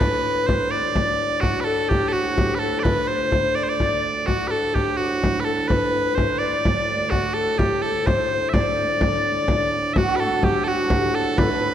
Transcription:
Already playing: harmonium D2 A2
0.00 bagpipes B4, recorder B4, frame drum
0.47 bagpipes C5, frame drum
0.71 bagpipes D5, recorder D5, frame drum
0.96 frame drum
1.41 bagpipes F#4, recorder F#4, frame drum
1.61 bagpipes A4 B4
1.67 recorder A4
1.89 bagpipes G4, recorder G4, frame drum
2.08 bagpipes A4
2.13 bagpipes F#4, recorder F#4, frame drum
2.36 recorder G4, frame drum
2.55 bagpipes B4
2.59 bagpipes A4, recorder A4
2.80 bagpipes B4 D5
2.85 recorder B4, frame drum
3.08 bagpipes C5, recorder C5, frame drum
3.32 frame drum
3.55 bagpipes D5, recorder D5
3.63 bagpipes C5
3.69 recorder D5, bagpipes D5
3.80 frame drum
4.04 frame drum
4.26 harmonium D2 A2, bagpipes F#4, recorder F#4, frame drum
4.48 bagpipes A4 B4, recorder A4
4.74 recorder G4, bagpipes G4, frame drum
4.97 bagpipes F#4, recorder F#4, frame drum
5.24 frame drum
5.40 bagpipes B4
5.45 bagpipes A4, recorder A4
5.68 bagpipes B4, recorder C5, frame drum
5.73 recorder B4
6.15 bagpipes C5, frame drum
6.39 bagpipes D5, recorder D5, frame drum
6.65 frame drum
7.10 bagpipes F#4, recorder F#4, frame drum
7.34 bagpipes A4, recorder A4
7.58 bagpipes G4, recorder G4, frame drum
7.82 bagpipes A4, recorder A4, frame drum
8.06 recorder C5, bagpipes C5, frame drum
8.49 bagpipes E5
8.53 bagpipes D5, recorder D5, frame drum
9.01 frame drum
9.48 frame drum
9.93 harmonium D2 A2, recorder F#4, hammered dulcimer F#4, bagpipes F#4 E5, frame drum
10.03 hammered dulcimer F#4
10.08 hammered dulcimer F#4
10.16 hammered dulcimer A4, bagpipes A4 B4
10.43 hammered dulcimer G4, recorder G4, bagpipes G4, frame drum
10.64 hammered dulcimer F#4, recorder F#4, bagpipes A4, frame drum
10.68 bagpipes F#4
10.90 recorder G4, frame drum
11.13 recorder A4, bagpipes A4, hammered dulcimer A4
11.36 recorder B4, hammered dulcimer B4, bagpipes B4, frame drum
11.43 recorder A4
11.50 recorder B4
11.61 hammered dulcimer B4

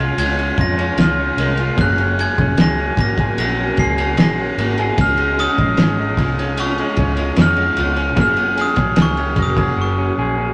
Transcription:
Already playing: tine electric piano G#3 C#4 F4 G#4, clean electric guitar G#3 C#4, ambient pad F4 C#5 G#5, glockenspiel G#6
0.00 clean electric guitar F4
0.17 fingered electric bass C#2, glockenspiel G#6, ride
0.38 clean electric guitar C#4, ride
0.58 fingered electric bass F2, clean electric guitar F4, glockenspiel A#6, kick, ride
0.78 clean electric guitar C#4, ride
0.97 fingered electric bass C#2, clean electric guitar F4, glockenspiel F6, snare, ride
1.19 clean electric guitar C#4
1.37 fingered electric bass C2, tine electric piano G#3 C#4 F4 A#4, clean electric guitar G#3, ride
1.57 clean electric guitar F4, ride
1.76 fingered electric bass F#1, clean electric guitar F#3, tine electric piano A#3 C#4 F#4, ambient pad F#4 A#4 G#5, kick, ride
1.81 tine electric piano G#4, glockenspiel F#6
1.98 clean electric guitar C#4, ride
2.19 clean electric guitar G#4, glockenspiel G#6, ride
2.38 fingered electric bass F1, clean electric guitar C#4, kick, ride
2.57 fingered electric bass C#2, clean electric guitar G#4, snare, ride
2.61 glockenspiel A#6
2.80 clean electric guitar C#4
2.97 fingered electric bass G#1, clean electric guitar A#3, glockenspiel A#6, kick, ride
3.18 clean electric guitar G#4, kick, ride
3.37 fingered electric bass A#1, clean electric guitar F#3, glockenspiel A#6, ride
3.59 clean electric guitar C#4
3.77 fingered electric bass C#2, clean electric guitar G#4, glockenspiel C7, kick, ride
3.98 clean electric guitar C#4, ride
4.17 fingered electric bass A#1, clean electric guitar G#4, glockenspiel A#6, snare, ride
4.39 clean electric guitar C#4
4.58 fingered electric bass G#1, clean electric guitar A#3, ride
4.78 clean electric guitar G#4, ride
4.96 fingered electric bass C#2, tine electric piano G#3 C#4 F4, ambient pad F4 C#5, kick, ride
5.01 tine electric piano G#4, glockenspiel F6
5.17 clean electric guitar G#3, ride
5.39 clean electric guitar C#4, glockenspiel D#6, ride
5.58 fingered electric bass A#1, clean electric guitar G#3, kick, ride
5.77 fingered electric bass G#1, clean electric guitar C#4, snare, ride
5.99 clean electric guitar G#3
6.17 fingered electric bass C2, clean electric guitar F3, kick, ride
6.39 clean electric guitar C#4, ride
6.57 glockenspiel C#6, ride
6.78 clean electric guitar G#3, ride
6.96 fingered electric bass C#2, clean electric guitar C#4, kick, ride
7.17 clean electric guitar G#3, ride
7.36 fingered electric bass F2, clean electric guitar C#4, snare, ride
7.42 glockenspiel F6
7.56 clean electric guitar G#3, ride
7.77 fingered electric bass C#2, clean electric guitar F3, ride
7.96 clean electric guitar C#4, ride
8.16 fingered electric bass F#1, clean electric guitar F#3, tine electric piano A#3 C#4 F#4, ambient pad F#4 A#4, kick, ride
8.21 tine electric piano G#4, glockenspiel F6
8.37 clean electric guitar C#4, ride
8.57 clean electric guitar G#4, ride
8.61 glockenspiel D#6
8.76 fingered electric bass A#1, clean electric guitar C#4, kick, snare, ride
8.96 fingered electric bass C#2, clean electric guitar G#4, snare, ride
9.02 glockenspiel C#6
9.17 clean electric guitar C#4, ride
9.36 fingered electric bass F1, clean electric guitar A#3, kick, ride
9.42 glockenspiel D#6
9.57 clean electric guitar G#4, kick, ride
9.77 fingered electric bass F#1, clean electric guitar F#3
9.81 glockenspiel C#6
9.98 clean electric guitar C#4
10.18 fingered electric bass A#1, clean electric guitar G#4
10.38 clean electric guitar C#4

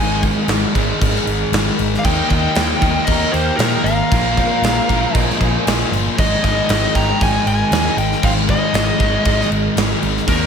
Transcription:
Already playing: picked electric bass G#1, distorted electric guitar G#2 D#3, tonewheel organ G#3 D#4 A#4, lead electric guitar D#5 G#5
0.00 distorted electric guitar G#3
0.23 kick, crash
0.48 picked electric bass G#1, snare, crash
0.75 picked electric bass G#1, distorted electric guitar G#2 D#3 G#3, kick, crash
1.01 picked electric bass G#1, kick, crash
1.16 snare
1.26 picked electric bass G#1, crash
1.52 picked electric bass G#1, distorted electric guitar G#2 D#3, snare, crash
1.57 distorted electric guitar G#3
1.79 picked electric bass G#1, crash
1.94 lead electric guitar D5, snare
1.99 lead electric guitar F5
2.04 picked electric bass D#2, distorted electric guitar D#3 A#3 D#4, lead electric guitar D#5 G5, tonewheel organ F5, kick, crash
2.30 picked electric bass D#2, lead electric guitar D#5 G5, kick, crash
2.55 picked electric bass D#2, snare, crash
2.81 picked electric bass D#2, distorted electric guitar A#3 D#4, kick, crash
2.85 distorted electric guitar D#3
3.05 picked electric bass D#2, lead electric guitar A#4 D#5, kick, crash
3.32 picked electric bass D#2, lead electric guitar G4 C5, crash
3.57 picked electric bass A#2, distorted electric guitar D#3, lead electric guitar D#4 A#4, snare, crash
3.62 distorted electric guitar A#3 D#4
3.83 picked electric bass G#1, lead electric guitar A#4 F5, crash
4.11 picked electric bass A#1, distorted electric guitar A#2 F3 A#3, tonewheel organ A#3 F4 C5, kick, crash
4.37 kick, crash
4.62 picked electric bass A#1, snare, crash
4.88 picked electric bass A#1, distorted electric guitar A#2 F3 A#3, kick, crash
5.14 picked electric bass A#1, lead electric guitar G#4 D#5, kick, crash
5.30 snare
5.40 picked electric bass A#1, kick, crash
5.66 picked electric bass A#1, distorted electric guitar A#2 F3 A#3, snare, crash
5.92 picked electric bass G1, crash
6.17 picked electric bass G#1, distorted electric guitar G#2 D#3 G#3, tonewheel organ G#3 D#4 A#4, lead electric guitar G#4 D#5, kick, crash
6.43 picked electric bass G#1, lead electric guitar G#4 D#5, kick, crash
6.69 picked electric bass G#1, snare, crash
6.95 picked electric bass G#1, distorted electric guitar G#2 D#3 G#3, lead electric guitar G5 A#5, kick, crash
7.19 picked electric bass G#1, lead electric guitar D#5 G#5, kick, crash
7.46 picked electric bass G#1, lead electric guitar D#5 G#5, crash
7.71 picked electric bass D#2, distorted electric guitar G#2 D#3 G#3, snare, crash
7.97 picked electric bass G#1, lead electric guitar D#5 G5, crash
8.12 snare
8.22 picked electric bass G#1, distorted electric guitar G#2 D#3 G#3, lead electric guitar C5 F5, kick, crash
8.49 lead electric guitar G#4 D#5, kick, crash
8.73 picked electric bass G#1, snare, crash
8.99 picked electric bass G#1, distorted electric guitar G#2 D#3 G#3, kick, crash
9.25 picked electric bass G#1, kick, crash
9.41 snare
9.51 picked electric bass G#1, crash
9.76 picked electric bass G#1, distorted electric guitar G#2 D#3 G#3, snare, crash
10.03 picked electric bass G#1, crash
10.17 snare
10.27 picked electric bass D#2, distorted electric guitar D#3 A#3 D#4, lead electric guitar D#4 A#4, tonewheel organ F5, kick, crash

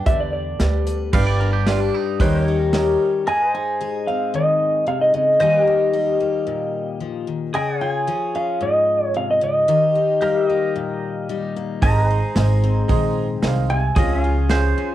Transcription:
Already playing: steel-string acoustic guitar B3 D4 B4, pedal steel guitar B4 D5 G5
0.06 upright bass E2, steel-string acoustic guitar D3, upright piano G4 B4 D5, pedal steel guitar E5, kick, closed hi-hat
0.20 pedal steel guitar D5
0.33 pedal steel guitar D5
0.59 upright bass D2, steel-string acoustic guitar G3, upright piano G4 B4 D5, snare, closed hi-hat
0.87 steel-string acoustic guitar B4, closed hi-hat
1.13 upright bass G1, steel-string acoustic guitar G2 B4, upright piano D4 G4 B4 D5, pedal steel guitar B4 D5 G5, clean electric guitar F5, kick, crash
1.27 clean electric guitar D5
1.40 steel-string acoustic guitar D4, clean electric guitar A#4
1.53 clean electric guitar G4
1.66 steel-string acoustic guitar G3 B4, upright piano D4 G4 B4 D5, clean electric guitar F4, snare, open hi-hat
1.80 clean electric guitar D4
1.95 clean electric guitar D#4
2.20 upright bass D#2, steel-string acoustic guitar D#3 G3 C#4 D#4, upright piano D#4 G4 A#4 C#5, pedal steel guitar B4 C5 G5, kick, open hi-hat
2.24 steel-string acoustic guitar G4
2.41 pedal steel guitar A#4 C#5
2.48 steel-string acoustic guitar D#4
2.73 steel-string acoustic guitar G3 G4, upright piano D#4 G4 A#4 C#5, snare, open hi-hat
3.27 steel-string acoustic guitar G#2 G#4, pedal steel guitar A#4 D#5 G#5
3.52 steel-string acoustic guitar D#4, pedal steel guitar C5 G#5
3.81 steel-string acoustic guitar G#3 G#4
4.07 steel-string acoustic guitar C4, pedal steel guitar F5
4.34 steel-string acoustic guitar D#3, pedal steel guitar D#5
4.86 steel-string acoustic guitar C3, pedal steel guitar F5
5.01 pedal steel guitar D#5
5.14 steel-string acoustic guitar C#3, pedal steel guitar D#5
5.40 steel-string acoustic guitar D#3 G3 A#3 D#4 G4, pedal steel guitar C5 D#5 G#5
5.62 pedal steel guitar A#4 G5
5.67 steel-string acoustic guitar D#4
5.93 steel-string acoustic guitar G3 G4
6.20 steel-string acoustic guitar A#3
6.47 steel-string acoustic guitar A#2
7.00 steel-string acoustic guitar F3
7.27 steel-string acoustic guitar D#3
7.54 steel-string acoustic guitar C#3 G#4, pedal steel guitar G#4 D#5 G5 G#5
7.80 steel-string acoustic guitar F4, pedal steel guitar C#5 F5 G#5
8.07 steel-string acoustic guitar F3 G#4
8.35 steel-string acoustic guitar C#4, pedal steel guitar F5
8.61 steel-string acoustic guitar G#2, pedal steel guitar D#5
9.06 pedal steel guitar C#5
9.14 steel-string acoustic guitar C3, pedal steel guitar F5
9.31 pedal steel guitar D#5
9.41 steel-string acoustic guitar C#3, pedal steel guitar D#5
9.68 steel-string acoustic guitar D#3 G4
9.95 steel-string acoustic guitar D#4
10.21 steel-string acoustic guitar G3 G4, pedal steel guitar G4 A#4 F5
10.49 steel-string acoustic guitar A#3, pedal steel guitar D#5
10.76 steel-string acoustic guitar A#2
11.29 steel-string acoustic guitar G3 D#4
11.56 steel-string acoustic guitar A#3
11.81 upright bass G#1, steel-string acoustic guitar G#2 G#4, upright piano D#4 G#4 C5 D#5, pedal steel guitar G4 A#4 D#5 A#5, kick, open hi-hat
12.03 pedal steel guitar G#4
12.09 steel-string acoustic guitar D#4, pedal steel guitar C5
12.35 upright bass G#1, steel-string acoustic guitar G#3 G#4, upright piano D#4 G#4 C5 D#5, snare, open hi-hat
12.64 steel-string acoustic guitar C4
12.88 upright bass A#1, steel-string acoustic guitar D#3, upright piano D#4 G#4 C5 D#5, kick, open hi-hat
13.42 upright bass C2, steel-string acoustic guitar A#2, upright piano D#4 G#4 C5 F5, snare, open hi-hat
13.70 steel-string acoustic guitar C3, pedal steel guitar G#5
13.95 upright bass C#2, steel-string acoustic guitar C#3 F3 C#4 F4, pedal steel guitar C4 G#4 D#5, upright piano F4 G#4 C#5 F5, kick, open hi-hat
13.99 steel-string acoustic guitar G#4
14.18 pedal steel guitar C#4
14.24 steel-string acoustic guitar F4, pedal steel guitar F5
14.49 steel-string acoustic guitar F3 G#4, upright piano C#4 F4 G#4 F5, clean electric guitar C5, snare, open hi-hat
14.78 steel-string acoustic guitar C#4

